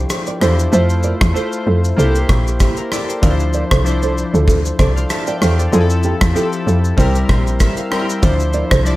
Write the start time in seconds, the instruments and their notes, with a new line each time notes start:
Already playing: synth keys F3 D4 E4 G4 C5
0.10 cross-stick, shaker
0.27 nylon-string guitar A#4 D5, shaker
0.40 log drum bass E2, synth keys F3 D4 E4 C5, nylon-string guitar A4 C5, cross-stick, shaker
0.59 shaker
0.72 log drum bass F2, synth keys A3 E4 F4 C5, nylon-string guitar C5 E5, shaker
0.90 shaker
1.03 nylon-string guitar A#4 D5, shaker
1.21 log drum bass E2, kick, cross-stick, shaker
1.34 synth keys A3 E4 F4 C5, nylon-string guitar A4 C5, shaker
1.52 shaker
1.67 log drum bass F2, nylon-string guitar F4 A4
1.84 shaker
1.97 log drum bass C2, synth keys A#3 D4 G4 C5, nylon-string guitar E4 A4, shaker
2.04 synth keys E4
2.15 shaker
2.29 log drum bass A#1, kick, cross-stick, shaker
2.47 shaker
2.60 nylon-string guitar E4 G4, kick, cross-stick, shaker
2.77 synth keys E4 A#4, shaker
2.92 synth keys A4 D5, cross-stick, shaker
3.09 synth keys G4 C5, shaker
3.22 log drum bass D2, synth keys F3 D4 E4 A#4, nylon-string guitar D5 F5, kick, shaker
3.31 synth keys C5
3.40 shaker
3.53 nylon-string guitar A#4 D5, shaker
3.71 log drum bass C2, nylon-string guitar A4 C5, kick, cross-stick, shaker
3.84 synth keys F3 D4 E4 C5, shaker
4.02 nylon-string guitar A4 C5, shaker
4.18 shaker
4.34 log drum bass D2, nylon-string guitar F4 A4, shaker
4.48 nylon-string guitar F4 A4, kick, shaker
4.65 shaker
4.79 log drum bass C2, synth keys A4 D5, nylon-string guitar A4 C5, kick, cross-stick, shaker
4.96 synth keys C5 F5, shaker
5.10 synth keys E5 A5, cross-stick, shaker
5.27 nylon-string guitar A#4 D5, synth keys D5 G5, shaker
5.42 log drum bass E2, nylon-string guitar A4 C5, synth keys C5 F5, cross-stick, shaker
5.59 synth keys A4 D5, shaker
5.72 log drum bass F2, synth keys F3 C4 E4 G#4, nylon-string guitar F4 A4, shaker
5.81 synth keys A4
5.90 shaker
6.03 nylon-string guitar E4 G4, shaker
6.21 log drum bass E2, kick, cross-stick, shaker
6.34 synth keys F3 C4 E4 G4, nylon-string guitar F4 A4, shaker
6.43 synth keys A4
6.53 shaker
6.67 log drum bass F2, nylon-string guitar F4 A4, shaker
6.85 shaker
6.97 log drum bass C2, synth keys G3 C4 E4 A#4, nylon-string guitar G4 C5, kick, shaker
7.15 shaker
7.29 log drum bass A#1, synth keys C5, kick, cross-stick
7.47 shaker
7.60 nylon-string guitar G4 A#4, synth keys E5, kick, cross-stick, shaker
7.77 synth keys F5, shaker
7.91 synth keys G3 C4 E4 A#4 G5, cross-stick
8.09 shaker
8.22 log drum bass D2, synth keys F3 D4 E4 C5, nylon-string guitar D5 F5, kick, shaker
8.40 shaker
8.53 nylon-string guitar A#4 D5, shaker
8.71 log drum bass C2, nylon-string guitar A4 C5, kick, cross-stick, shaker
8.84 synth keys F3 D4 E4 D5, shaker